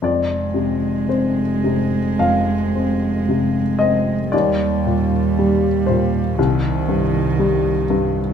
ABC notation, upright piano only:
X:1
M:4/4
L:1/8
Q:1/4=57
K:Fdor
V:1 name="Upright piano"
d2 c2 f3 e | d3 c4 z |]
V:2 name="Upright piano" clef=bass
F,, C, C C, F,, C C, C | E,, B,, G, B,, C,, G,, G, G,, |]